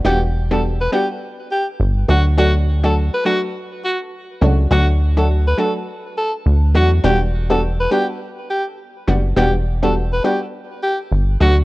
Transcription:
X:1
M:4/4
L:1/16
Q:"Swing 16ths" 1/4=103
K:Em
V:1 name="Alto saxophone"
G z2 A z B G z3 G z3 F z | F z2 A z B F z3 F z4 z | F z2 A z B A z3 A z3 F z | G z2 A z B G z3 G z4 z |
G z2 A z B G z3 G z3 F z |]
V:2 name="Synth pluck"
[G,B,DF] z2 [G,B,DF] z2 [G,B,DF] z6 z [F,A,DF] z | [F,A,DF] z2 [F,A,DF] z2 [F,A,DF] z6 z [F,A,DF] z | [F,A,DF] z2 [F,A,DF] z2 [F,A,DF] z6 z [F,A,DF] z | [G,B,DF] z2 [G,B,DF] z2 [G,B,DF] z6 z [G,B,DF] z |
[G,B,DF] z2 [G,B,DF] z2 [G,B,DF] z6 z [F,A,DF] z |]
V:3 name="Analog synth bass" clef=bass
E,,,6 z6 G,,,2 D,,2- | D,,6 z8 ^C,,2 | D,,6 z6 D,,2 E,,2 | E,,,6 z8 F,,,2 |
E,,,6 z6 G,,,2 D,,2 |]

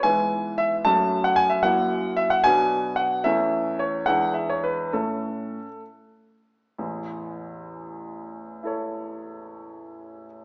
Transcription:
X:1
M:6/8
L:1/16
Q:3/8=68
K:A
V:1 name="Grand piano"
g4 e2 a3 f g e | f4 e f g4 f2 | e4 c2 f2 e c B2 | A6 z6 |
z12 | [EAc]12 |]
V:2 name="Grand piano" clef=bass
[G,,E,B,E]6 [F,,F,A,C]6 | [F,,F,^A,E]6 [B,,F,B,D]6 | [E,,E,A,C]6 [E,,E,G,D]6 | [A,,A,C]6 z6 |
[A,,,E,,]12- | [A,,,E,,]12 |]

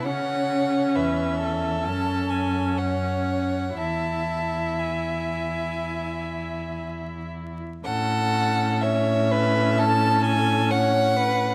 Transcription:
X:1
M:4/4
L:1/8
Q:1/4=62
K:A
V:1 name="Violin"
f2 e2 a g f2 | a2 g4 z2 | f2 e2 a g f2 |]
V:2 name="Violin"
c2 B A3 c2 | e6- e z | A2 c B A2 c B |]
V:3 name="Viola"
C4 C4 | E8 | C8 |]
V:4 name="Cello" clef=bass
C,2 E,,2 F,,4 | E,,8 | A,,8 |]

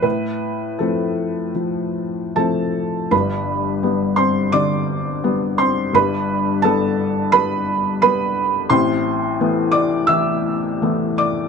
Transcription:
X:1
M:4/4
L:1/8
Q:1/4=85
K:Gmix
V:1 name="Felt piano"
B2 A4 [Aa]2 | [Bb]3 [Cc'] [dd']3 [Cc'] | [Bb]2 [Aa]2 [Bb]2 [Bb]2 | [Cc']3 [dd'] [ee']3 [dd'] |]
V:2 name="Felt piano" clef=bass
A,,2 [F,A,C]2 F,2 [F,A,C]2 | [G,,,G,,]2 [G,B,]2 D,2 [G,B,]2 | [G,,,G,,]2 [G,B,]2 G,2 [G,B,]2 | [A,,,A,,]2 [E,A,B,]2 E,2 [E,A,B,]2 |]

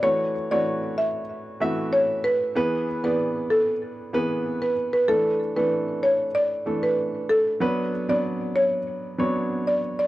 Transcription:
X:1
M:4/4
L:1/16
Q:1/4=95
K:Bdor
V:1 name="Marimba"
c z2 d z2 e z4 z c z B z | z3 B z2 A z6 B z B | A z2 B z2 c z d z2 B z2 A z | z3 d z2 c z6 d z d |]
V:2 name="Grand piano"
[E,A,Fc]2 z [E,A,Fc]4 z3 [E,A,Fe]4 z2 | [E,B,GB]2 z [E,B,Gd]4 z3 [E,B,GB]4 z2 | [E,A,DA]2 z [E,A,DA]4 z3 [E,A,DA]4 z2 | [F,B,DB]2 z [F,B,Dd]4 z3 [F,B,Dc]4 z2 |]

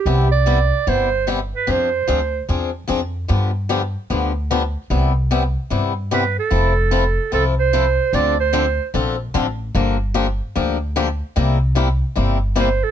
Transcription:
X:1
M:4/4
L:1/8
Q:"Swing" 1/4=149
K:C
V:1 name="Clarinet"
G d3 c2 z B | c4 z4 | z8 | z6 B A- |
[K:F] A4 A c3 | d c3 z4 | z8 | z6 c A |]
V:2 name="Steel-string acoustic guitar"
[C,G,B,EG] z [C,G,B,EG] z [C,G,B,EG] z [C,G,B,EG] z | [F,CD_A] z [F,CDA] z [F,CDA] z [F,CDA] z | [D,F,B,DG] z [D,F,B,DG] z [D,F,B,DG] z [D,F,B,DG] z | [C,G,B,EG] z [C,G,B,EG] z [C,G,B,EG] z [C,G,B,EG] z |
[K:F] [F,CEA] z [F,CEA] z [F,CEA] z [F,CEA] z | [D,F,CDA] z [D,F,CDA] z [D,F,CDA] z [D,F,CDA] z | [D,F,B,DG] z [D,F,B,DG] z [D,F,B,DG] z [D,F,B,DG] z | [C,G,B,EG] z [C,G,B,EG] z [C,G,B,EG] z [C,G,B,EG] z |]
V:3 name="Upright bass" clef=bass
C,,4 G,,,4 | F,,2 D,,2 E,,2 F,,2 | G,,4 D,,4 | C,,4 G,,4 |
[K:F] F,,,4 C,,4 | D,,4 B,,,2 A,,,2 | G,,,4 D,,4 | C,,4 G,,,4 |]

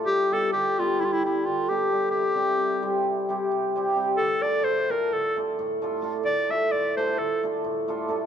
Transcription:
X:1
M:9/8
L:1/16
Q:3/8=87
K:Dm
V:1 name="Clarinet"
G2 A2 G2 F2 E/2 F/2 E E2 F2 G4 | G8 z8 z2 | A2 d2 c2 B2 A2 z8 | d2 e2 d2 c2 A2 z8 |]
V:2 name="Hammered dulcimer"
z2 [G,=B,DG]2 z2 [G,B,DG]2 z2 [G,B,DG]2 z2 [G,B,DG]2 [G,B,DG]2 | z2 [G,CEG]2 z2 [G,CEG]2 z2 [G,CEG]2 z2 [G,CEG]2 [G,CEG]2 | z2 [A,DFA]2 z2 [A,DFA]2 z2 [A,DFA]2 z2 [A,DFA]2 [A,DFA]2 | z2 [A,DFA]2 z2 [A,DFA]2 z2 [A,DFA]2 z2 [A,DFA]2 [A,DFA]2 |]
V:3 name="Hammered dulcimer" clef=bass
G,4 D,4 G,4 D,4 z2 | C,4 C,4 C,4 C,4 z2 | D,4 A,,4 D,4 A,,4 z2 | D,4 A,,4 D,4 A,,4 z2 |]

